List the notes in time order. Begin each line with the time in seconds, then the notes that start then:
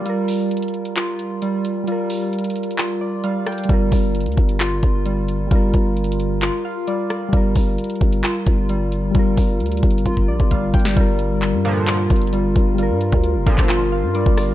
0.01 G3
0.06 G3 F4, closed hi-hat
0.10 A#4
0.28 open hi-hat
0.51 closed hi-hat
0.57 closed hi-hat
0.63 closed hi-hat
0.68 closed hi-hat
0.74 closed hi-hat
0.85 closed hi-hat
0.96 F4, clap, closed hi-hat
1.19 closed hi-hat
1.42 G3, closed hi-hat
1.65 closed hi-hat
1.84 G3, closed hi-hat
1.88 F4
1.92 A#4
2.10 open hi-hat
2.33 closed hi-hat
2.39 closed hi-hat
2.44 closed hi-hat
2.50 closed hi-hat
2.56 closed hi-hat
2.63 closed hi-hat
2.71 closed hi-hat
2.78 F4, clap, closed hi-hat
3.01 D5
3.24 G3 F5, closed hi-hat
3.46 G5, cross-stick, closed hi-hat
3.52 closed hi-hat
3.58 closed hi-hat
3.64 G3, closed hi-hat
3.69 G1 G3 F4, kick, closed hi-hat
3.73 A#4
3.92 G1, kick, open hi-hat
4.15 closed hi-hat
4.20 closed hi-hat
4.26 D2, closed hi-hat
4.32 closed hi-hat
4.37 G1, kick, closed hi-hat
4.49 closed hi-hat
4.60 F4, clap, closed hi-hat
4.83 G1, kick, closed hi-hat
5.06 G3, closed hi-hat
5.28 closed hi-hat
5.47 G1 G3, kick, closed hi-hat
5.51 G3 F4
5.55 A#4
5.74 G1, kick, closed hi-hat
5.97 closed hi-hat
6.04 closed hi-hat
6.12 closed hi-hat
6.20 closed hi-hat
6.42 F4, clap, closed hi-hat
6.65 F5
6.87 G3 D5, closed hi-hat
7.10 D5, cross-stick, closed hi-hat
7.29 G3
7.33 G1 G3 F4, kick, closed hi-hat
7.37 A#4
7.55 G1, kick, open hi-hat
7.78 closed hi-hat
7.84 closed hi-hat
7.90 closed hi-hat
7.95 closed hi-hat
8.01 G1, kick, closed hi-hat
8.12 closed hi-hat
8.24 F4, clap, closed hi-hat
8.46 G1, kick, closed hi-hat
8.69 G3, closed hi-hat
8.92 closed hi-hat
9.11 G1 G3, kick, closed hi-hat
9.15 F4
9.19 A#4
9.37 G1, kick, open hi-hat
9.60 D2, closed hi-hat
9.66 closed hi-hat
9.72 closed hi-hat
9.77 closed hi-hat
9.83 G1, kick, closed hi-hat
9.91 closed hi-hat
9.98 closed hi-hat
10.06 G1 F4, kick, closed hi-hat
10.17 kick
10.28 A#1 D5
10.40 G1, kick
10.51 G3 F5, kick, closed hi-hat
10.74 G1 G5, kick, closed hi-hat
10.80 closed hi-hat
10.85 snare, closed hi-hat
10.91 G3, closed hi-hat
10.97 G1 G3 D4 F4 A#4, kick, closed hi-hat
11.01 A#4
11.19 closed hi-hat
11.42 clap, closed hi-hat
11.53 G2
11.65 A#2 D3 F3, closed hi-hat
11.87 F4, clap, closed hi-hat
12.10 G1, kick, closed hi-hat
12.16 closed hi-hat
12.22 closed hi-hat
12.27 closed hi-hat
12.33 G3, closed hi-hat
12.56 G1, kick, closed hi-hat
12.74 G3, closed hi-hat
12.79 G3 F4
12.83 A#4
12.90 G2
13.01 closed hi-hat
13.12 D2, kick
13.24 closed hi-hat
13.35 F1
13.46 G1 A#2 D3 F3, kick, closed hi-hat
13.58 G1, kick, clap
13.69 F4, clap, closed hi-hat
13.92 F5
14.03 G2
14.15 G3 D5, closed hi-hat
14.26 G1, kick
14.37 D5, cross-stick, open hi-hat